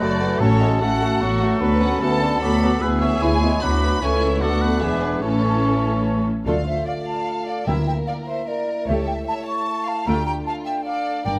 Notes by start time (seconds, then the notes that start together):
Already playing: A3 F#4
0.00 F#1 F#2 F#3 A3 F#4 A4 D5 B5
0.20 E3 A3 F#4
0.40 A1 A2 F#3 A3 C#4 F#4 A4 C#5 A5
0.61 G#3 A3 F#4
0.80 A1 A2 A3 C#4 F#4 A4 F#5 A5
1.01 A3 F#4
1.21 A1 A2 F#3 A3 B3 F#4 C#6
1.41 A3 F#4
1.60 D2 B3 D4 F#4 B4 B5
1.81 B3 C#4 F#4 F#5
2.01 D2 E3 B3 F#4 A4 A5
2.22 D3 B3 F#4
2.40 D2 F#3 B3 F#4 B5 D6
2.63 F#3 B3 F#4
2.81 D2 E3 B3 E4 G#4 B4 E6
3.01 B3 E4 C#5 E5
3.20 D2 E3 B3 E4 G#5 B5
3.42 G#3 B3 E4
3.61 D2 F#3 B3 D4 E4 F#4 B4 B5 D6
3.81 B3 E4 B4
4.01 C#2 E3 A3 C#4 E4 A4 C#5 G#5 C#6
4.22 E5
4.41 D2 D3 A3 B3 F#4 A4 F#5 D6
4.61 B4
4.81 E1 E2 E3 G#3 B3 D4 G#4 E5 D6
5.02 B4
5.22 A1 A2 E3 A3 C#4 E4 A4 C#5 C#6
6.46 D2 D3 A3 F4 A4 D5 F5
6.67 C5 E5
6.86 D5 F5
7.07 F5 A5
7.28 A4
7.47 D5 F5
7.67 D2 D3 A#3 E4 A#4 E5 G5
7.87 E5 G5
8.07 D5 F5
8.28 C5 E5
8.48 A#4 D5
8.87 C#2 A3 G4 A4 C#5 E5
9.07 E5 G5
9.27 C#5 E5 A5
9.47 A5 C#6
9.67 A4
9.87 F5 A5
10.06 D2 A3 D4 F4 G4 G5 A#5
10.26 G5 A#5
10.46 F4 F5 A5
10.65 E5 G5
10.85 A4 D5 F5
11.25 G1 G2 A#3 D4 A#4 D5 G5